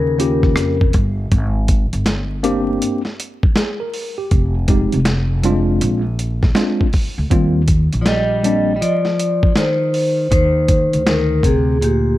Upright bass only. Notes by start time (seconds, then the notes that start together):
Already playing: D#2
0.57 F2
0.94 G1
1.32 G#1
1.93 G1
4.31 F1
4.93 F1
5.81 A#1
7.18 D2
7.32 D#2
7.93 A#1
10.31 D#2
10.93 D2